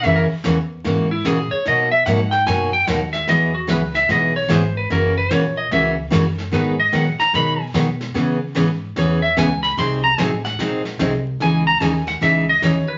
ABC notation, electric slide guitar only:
X:1
M:4/4
L:1/16
Q:"Swing" 1/4=148
K:G#m
V:1 name="Electric slide guitar"
e A z8 E2 G2 c2 | d2 e2 f2 =g2 ^g2 =g2 f2 e2 | d2 F2 B2 e2 d2 c2 =c2 B2 | A2 B2 c2 d2 e2 z6 |
B2 d2 f2 a2 b2 g2 z4 | z8 c2 e2 g2 b2 | ^b2 a2 g2 f4 z6 | g2 a2 g2 f2 e2 d2 c2 B2 |]